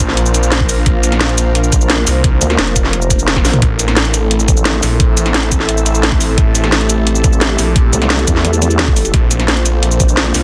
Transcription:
Already playing: A#1 A#3 D4 F4 A#4 C5 F5
0.09 snare
0.17 closed hi-hat
0.26 cabasa
0.34 closed hi-hat, cabasa
0.43 cabasa
0.52 snare, closed hi-hat
0.60 kick
0.69 open hi-hat, cabasa
0.86 A#1, kick, closed hi-hat
1.03 closed hi-hat, cabasa
1.12 snare, closed hi-hat
1.21 A#1, snare, closed hi-hat
1.29 closed hi-hat
1.38 closed hi-hat, cabasa
1.55 closed hi-hat
1.64 cabasa
1.72 A#1, kick, closed hi-hat, cabasa
1.81 cabasa
1.90 snare, closed hi-hat
2.07 C2, open hi-hat, cabasa
2.24 kick, closed hi-hat
2.41 D2, closed hi-hat, cabasa
2.50 snare, closed hi-hat
2.59 F1, snare, closed hi-hat
2.67 closed hi-hat
2.76 kick, closed hi-hat, cabasa
2.85 snare
2.93 closed hi-hat
3.02 cabasa
3.10 kick, closed hi-hat, cabasa
3.19 cabasa
3.28 snare, closed hi-hat
3.36 kick, snare
3.45 A#1, snare, open hi-hat, cabasa
3.53 closed hi-hat, mid tom
3.62 A1 A3 C4 E4 A4, kick, closed hi-hat
3.75 A4
3.79 closed hi-hat, cabasa
3.88 snare, closed hi-hat
3.97 A1, snare, closed hi-hat
4.04 E5, closed hi-hat
4.14 closed hi-hat, cabasa
4.31 closed hi-hat
4.40 cabasa
4.48 A1, kick, closed hi-hat, cabasa
4.57 cabasa
4.65 snare, closed hi-hat
4.83 A#1, open hi-hat, cabasa
5.00 kick, closed hi-hat
5.17 A1, closed hi-hat, cabasa
5.26 snare, closed hi-hat
5.34 snare, closed hi-hat
5.43 closed hi-hat
5.52 kick, closed hi-hat, cabasa
5.60 snare
5.69 closed hi-hat
5.77 cabasa
5.86 closed hi-hat, cabasa
5.95 cabasa
6.03 snare, closed hi-hat
6.12 kick
6.21 open hi-hat, cabasa
6.38 A1 G4, kick, closed hi-hat
6.55 closed hi-hat, cabasa
6.64 snare, closed hi-hat
6.72 A1, snare, closed hi-hat
6.81 closed hi-hat
6.90 closed hi-hat, cabasa
7.07 closed hi-hat
7.15 cabasa
7.24 A1, kick, closed hi-hat, cabasa
7.33 cabasa
7.41 snare, closed hi-hat
7.59 A#1, open hi-hat, cabasa
7.76 kick, closed hi-hat
7.93 C2, closed hi-hat, cabasa
8.02 snare, closed hi-hat
8.10 snare, closed hi-hat
8.19 closed hi-hat
8.27 E2, kick, closed hi-hat, cabasa
8.36 snare
8.45 closed hi-hat
8.53 cabasa
8.62 closed hi-hat, cabasa
8.71 cabasa
8.79 snare, closed hi-hat
8.88 kick
8.96 open hi-hat, cabasa
9.05 closed hi-hat, cabasa
9.14 A#1 A#3 D4 F4 C5, kick, closed hi-hat
9.31 closed hi-hat, cabasa
9.40 A#4, snare, closed hi-hat
9.45 A#1 F5, snare, closed hi-hat
9.57 closed hi-hat
9.66 closed hi-hat, cabasa
9.83 closed hi-hat
9.91 cabasa
10.00 A#1, kick, closed hi-hat, cabasa
10.09 cabasa
10.17 snare, closed hi-hat
10.34 C2, open hi-hat, cabasa

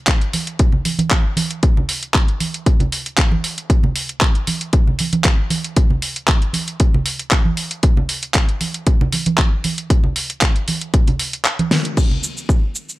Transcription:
0.07 kick, clap, closed hi-hat
0.21 closed hi-hat
0.33 open hi-hat, high conga
0.47 closed hi-hat
0.59 kick, closed hi-hat
0.72 low conga
0.85 open hi-hat, high conga
0.99 closed hi-hat, high conga
1.11 kick, clap, closed hi-hat
1.37 open hi-hat, high conga
1.51 closed hi-hat
1.63 kick, closed hi-hat
1.77 low conga
1.89 open hi-hat
2.03 closed hi-hat
2.14 kick, clap, closed hi-hat
2.28 closed hi-hat
2.40 open hi-hat, high conga
2.54 closed hi-hat
2.66 kick, closed hi-hat
2.80 closed hi-hat, low conga
2.92 open hi-hat
3.06 closed hi-hat
3.18 kick, clap, closed hi-hat
3.32 high conga
3.44 open hi-hat
3.58 closed hi-hat
3.70 kick, closed hi-hat
3.83 low conga
3.96 open hi-hat
4.09 closed hi-hat
4.21 kick, clap, closed hi-hat
4.35 closed hi-hat
4.47 open hi-hat, high conga
4.61 closed hi-hat
4.73 kick, closed hi-hat
4.87 low conga
4.99 open hi-hat, high conga
5.13 closed hi-hat, high conga
5.24 kick, clap, closed hi-hat
5.50 open hi-hat, high conga
5.64 closed hi-hat
5.76 kick, closed hi-hat
5.90 low conga
6.02 open hi-hat
6.16 closed hi-hat
6.28 kick, clap, closed hi-hat
6.42 closed hi-hat
6.53 open hi-hat, high conga
6.68 closed hi-hat
6.80 kick, closed hi-hat
6.94 low conga
7.06 open hi-hat
7.19 closed hi-hat
7.31 kick, clap, closed hi-hat
7.45 high conga
7.57 open hi-hat
7.71 closed hi-hat
7.83 kick, closed hi-hat
7.97 low conga
8.09 open hi-hat
8.23 closed hi-hat
8.34 kick, clap, closed hi-hat
8.49 closed hi-hat
8.61 open hi-hat, high conga
8.74 closed hi-hat
8.87 kick, closed hi-hat
9.01 low conga
9.12 open hi-hat, high conga
9.26 closed hi-hat, high conga
9.38 kick, clap, closed hi-hat
9.64 open hi-hat, high conga
9.78 closed hi-hat
9.90 kick, closed hi-hat
10.04 low conga
10.16 open hi-hat
10.30 closed hi-hat
10.41 kick, clap, closed hi-hat
10.56 closed hi-hat
10.68 open hi-hat, high conga
10.81 closed hi-hat
10.94 kick, closed hi-hat
11.07 closed hi-hat, low conga
11.19 open hi-hat
11.33 closed hi-hat
11.45 clap, closed hi-hat
11.59 closed hi-hat, high conga
11.71 snare, open hi-hat
11.85 closed hi-hat
11.97 kick, crash, shaker
12.11 low conga
12.24 shaker
12.37 shaker
12.49 kick, shaker
12.75 shaker
12.89 shaker

